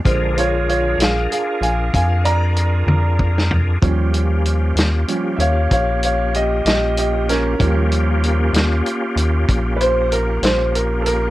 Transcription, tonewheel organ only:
\new Staff \with { instrumentName = "Tonewheel organ" } { \time 12/8 \key ees \major \tempo 4. = 64 <d' f' aes' bes'>1. | <bes des' f' g'>1. | <bes des' f' g'>1. | }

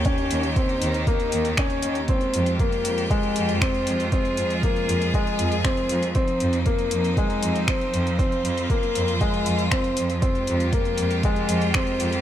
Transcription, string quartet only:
\new Staff \with { instrumentName = "String quartet" } { \time 4/4 \key f \minor \tempo 4 = 118 << { g'1 | g'1 | aes'1 | ees'1 |
f'1 | g'1 | } \\ { <ees ees'>1 | <aes f'>1~ | <aes f'>1 | <f c'>1~ |
<f c'>1 | <aes f'>1 | } >> }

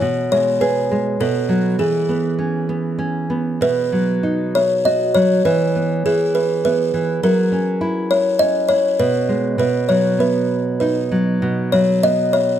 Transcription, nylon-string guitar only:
\new Staff \with { instrumentName = "Nylon-string guitar" } { \clef bass \time 3/4 \key b \mixolydian \tempo 4 = 100 b,8 gis8 gis'8 gis8 b,8 fis8 | e8 b8 cis'8 b8 cis'8 b8 | b,8 fis8 dis'4 fis'8 fis8 | e8 b8 e4 b8 e8 |
fis8 cis'8 e'4 cis'8 e'8 | b,8 gis8 b,8 fis8 b4 | dis'8 fis8 b,8 fis8 b4 | }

